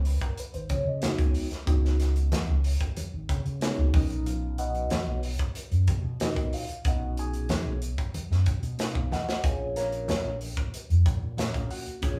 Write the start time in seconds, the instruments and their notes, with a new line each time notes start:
Already playing: fingered electric bass C#2
0.05 tine electric piano B4, open hi-hat, muted conga
0.21 tine electric piano A#4, kick, closed hi-hat
0.37 tine electric piano B4, closed hi-hat, muted conga
0.54 fingered electric bass G#1, tine electric piano C5, closed hi-hat
0.69 fingered electric bass C#3, tine electric piano C#5, kick, closed hi-hat, muted conga, high conga
0.87 fingered electric bass C#3, tine electric piano D#5
1.01 tine electric piano G#3 B3 D#4 F#4 F5, snare, closed hi-hat, high conga
1.18 fingered electric bass C#2, tine electric piano G#5, kick, closed hi-hat
1.34 open hi-hat
1.51 muted fingered electric bass stroke, snare, closed hi-hat
1.66 fingered electric bass C#2, tine electric piano G#3 B3 D#4 F#4, kick, closed hi-hat, muted conga
1.85 snare
2.00 snare, closed hi-hat
2.16 closed hi-hat
2.32 snare, closed hi-hat, high conga
2.48 fingered electric bass C#2
2.64 open hi-hat, muted conga
2.81 kick, closed hi-hat
2.97 closed hi-hat, muted conga, high conga
3.13 fingered electric bass G#1
3.29 fingered electric bass C#3, kick, closed hi-hat, muted conga
3.45 fingered electric bass C#3, closed hi-hat
3.60 tine electric piano G#3 B3 C#4 D#4 F#4 G#4 C#5, snare, closed hi-hat
3.78 fingered electric bass C#2
3.93 fingered electric bass B1, tine electric piano A#2 F#3 C#4 D#4 A#4 B4 D#5, kick, open hi-hat, high conga
4.10 closed hi-hat
4.26 tine electric piano F4 F5, closed hi-hat, muted conga
4.58 tine electric piano F#4 B4 D#5 F#5, closed hi-hat
4.75 closed hi-hat
4.90 snare, closed hi-hat, high conga
5.06 fingered electric bass B1
5.23 open hi-hat, muted conga
5.39 kick, closed hi-hat
5.55 closed hi-hat, muted conga
5.71 fingered electric bass F#2, closed hi-hat
5.87 fingered electric bass B2, kick, closed hi-hat, muted conga, high conga
6.04 fingered electric bass B2
6.19 tine electric piano A#2 C#4 D#4 F#4 A#4 B4 D#5, snare, closed hi-hat, high conga
6.36 fingered electric bass B1, kick, closed hi-hat
6.53 tine electric piano F4 F5, open hi-hat
6.68 muted fingered electric bass stroke, closed hi-hat
6.84 fingered electric bass B1, tine electric piano A#2 C#4 D#4 F#4 B4 D#5 F#5, kick, closed hi-hat, muted conga
7.17 tine electric piano G#4 G#5, closed hi-hat
7.33 closed hi-hat
7.49 snare, closed hi-hat, high conga
7.66 fingered electric bass B1
7.82 closed hi-hat, muted conga
7.98 kick, closed hi-hat
8.14 closed hi-hat, muted conga, high conga
8.30 fingered electric bass F#2, snare
8.46 fingered electric bass B2, kick, closed hi-hat, muted conga
8.62 fingered electric bass B2, closed hi-hat
8.78 tine electric piano A#3 C#4 D#4 F4 F5, snare, closed hi-hat
8.95 fingered electric bass B1, kick
9.11 tine electric piano F#4 B4 D#5 F#5, snare, high conga
9.27 muted fingered electric bass stroke, snare
9.43 fingered electric bass A#1, tine electric piano A#3 C#4 F4 G#4 C#5 F5 G#5, kick, closed hi-hat, muted conga
9.76 tine electric piano A#4 C#5 F5 A#5, snare, closed hi-hat
9.92 closed hi-hat
10.08 snare, closed hi-hat, high conga
10.25 fingered electric bass A#1
10.40 open hi-hat, muted conga
10.57 kick, closed hi-hat
10.73 closed hi-hat, muted conga
10.90 fingered electric bass F2, closed hi-hat
11.06 fingered electric bass A#2, kick, closed hi-hat, muted conga, high conga
11.23 fingered electric bass A#2
11.37 tine electric piano A#3 C#4 F4 A#4 C#5 F5, snare, closed hi-hat, high conga
11.54 fingered electric bass A#1, kick, closed hi-hat
11.70 tine electric piano F#4 F#5, open hi-hat
11.86 muted fingered electric bass stroke, closed hi-hat
12.02 fingered electric bass A#1, tine electric piano A#3 C#4 F4 G#4 C#5 F5 G#5, kick, closed hi-hat, muted conga